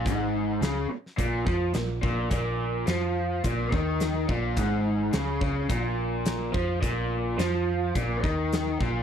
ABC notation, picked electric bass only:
X:1
M:4/4
L:1/8
Q:1/4=106
K:Cm
V:1 name="Picked electric bass" clef=bass
A,,,2 _D,, z B,,, F,, B,,, B,,, | B,,,2 F,,2 B,,, E,,2 B,,, | A,,,2 _D,, D,, B,,,3 F,, | B,,,2 F,,2 B,,, E,,2 B,,, |]